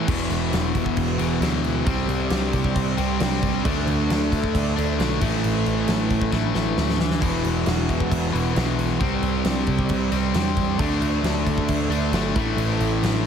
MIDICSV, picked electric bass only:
0, 0, Header, 1, 2, 480
1, 0, Start_track
1, 0, Key_signature, 1, "minor"
1, 0, Tempo, 446429
1, 81, Time_signature, 4, 2, 24, 8
1, 14261, End_track
2, 0, Start_track
2, 0, Title_t, "Picked electric bass"
2, 0, Program_c, 0, 34
2, 86, Note_on_c, 0, 28, 94
2, 306, Note_off_c, 0, 28, 0
2, 317, Note_on_c, 0, 28, 90
2, 542, Note_off_c, 0, 28, 0
2, 568, Note_on_c, 0, 28, 92
2, 788, Note_off_c, 0, 28, 0
2, 810, Note_on_c, 0, 28, 92
2, 1029, Note_off_c, 0, 28, 0
2, 1050, Note_on_c, 0, 28, 97
2, 1269, Note_off_c, 0, 28, 0
2, 1279, Note_on_c, 0, 28, 83
2, 1503, Note_off_c, 0, 28, 0
2, 1517, Note_on_c, 0, 38, 95
2, 1965, Note_off_c, 0, 38, 0
2, 2000, Note_on_c, 0, 36, 90
2, 2224, Note_off_c, 0, 36, 0
2, 2235, Note_on_c, 0, 36, 91
2, 2461, Note_off_c, 0, 36, 0
2, 2474, Note_on_c, 0, 36, 96
2, 2701, Note_off_c, 0, 36, 0
2, 2724, Note_on_c, 0, 36, 86
2, 2946, Note_off_c, 0, 36, 0
2, 2960, Note_on_c, 0, 36, 94
2, 3185, Note_off_c, 0, 36, 0
2, 3206, Note_on_c, 0, 36, 85
2, 3428, Note_off_c, 0, 36, 0
2, 3445, Note_on_c, 0, 36, 94
2, 3889, Note_off_c, 0, 36, 0
2, 3928, Note_on_c, 0, 38, 95
2, 4149, Note_off_c, 0, 38, 0
2, 4161, Note_on_c, 0, 38, 94
2, 4386, Note_off_c, 0, 38, 0
2, 4405, Note_on_c, 0, 38, 95
2, 4628, Note_off_c, 0, 38, 0
2, 4640, Note_on_c, 0, 38, 92
2, 4865, Note_off_c, 0, 38, 0
2, 4886, Note_on_c, 0, 38, 91
2, 5108, Note_off_c, 0, 38, 0
2, 5135, Note_on_c, 0, 38, 88
2, 5353, Note_off_c, 0, 38, 0
2, 5369, Note_on_c, 0, 35, 101
2, 5590, Note_off_c, 0, 35, 0
2, 5608, Note_on_c, 0, 33, 97
2, 5830, Note_off_c, 0, 33, 0
2, 5852, Note_on_c, 0, 33, 92
2, 6072, Note_off_c, 0, 33, 0
2, 6084, Note_on_c, 0, 33, 87
2, 6307, Note_off_c, 0, 33, 0
2, 6325, Note_on_c, 0, 33, 96
2, 6548, Note_off_c, 0, 33, 0
2, 6560, Note_on_c, 0, 33, 85
2, 6785, Note_off_c, 0, 33, 0
2, 6805, Note_on_c, 0, 33, 88
2, 7028, Note_off_c, 0, 33, 0
2, 7032, Note_on_c, 0, 33, 89
2, 7261, Note_off_c, 0, 33, 0
2, 7282, Note_on_c, 0, 38, 94
2, 7728, Note_off_c, 0, 38, 0
2, 7764, Note_on_c, 0, 28, 93
2, 7988, Note_off_c, 0, 28, 0
2, 8004, Note_on_c, 0, 28, 91
2, 8227, Note_off_c, 0, 28, 0
2, 8239, Note_on_c, 0, 28, 91
2, 8465, Note_off_c, 0, 28, 0
2, 8485, Note_on_c, 0, 28, 82
2, 8708, Note_off_c, 0, 28, 0
2, 8721, Note_on_c, 0, 28, 94
2, 8945, Note_off_c, 0, 28, 0
2, 8964, Note_on_c, 0, 28, 86
2, 9187, Note_off_c, 0, 28, 0
2, 9207, Note_on_c, 0, 35, 100
2, 9650, Note_off_c, 0, 35, 0
2, 9684, Note_on_c, 0, 36, 97
2, 9906, Note_off_c, 0, 36, 0
2, 9913, Note_on_c, 0, 36, 96
2, 10141, Note_off_c, 0, 36, 0
2, 10153, Note_on_c, 0, 36, 92
2, 10380, Note_off_c, 0, 36, 0
2, 10404, Note_on_c, 0, 36, 86
2, 10626, Note_off_c, 0, 36, 0
2, 10647, Note_on_c, 0, 36, 89
2, 10868, Note_off_c, 0, 36, 0
2, 10878, Note_on_c, 0, 36, 92
2, 11102, Note_off_c, 0, 36, 0
2, 11123, Note_on_c, 0, 40, 93
2, 11567, Note_off_c, 0, 40, 0
2, 11598, Note_on_c, 0, 38, 102
2, 11822, Note_off_c, 0, 38, 0
2, 11835, Note_on_c, 0, 38, 96
2, 12061, Note_off_c, 0, 38, 0
2, 12070, Note_on_c, 0, 38, 98
2, 12298, Note_off_c, 0, 38, 0
2, 12334, Note_on_c, 0, 38, 85
2, 12551, Note_off_c, 0, 38, 0
2, 12566, Note_on_c, 0, 38, 101
2, 12775, Note_off_c, 0, 38, 0
2, 12781, Note_on_c, 0, 38, 88
2, 13013, Note_off_c, 0, 38, 0
2, 13026, Note_on_c, 0, 31, 96
2, 13256, Note_off_c, 0, 31, 0
2, 13285, Note_on_c, 0, 33, 96
2, 13503, Note_off_c, 0, 33, 0
2, 13509, Note_on_c, 0, 33, 90
2, 13737, Note_off_c, 0, 33, 0
2, 13760, Note_on_c, 0, 33, 85
2, 13984, Note_off_c, 0, 33, 0
2, 14005, Note_on_c, 0, 33, 93
2, 14226, Note_off_c, 0, 33, 0
2, 14261, End_track
0, 0, End_of_file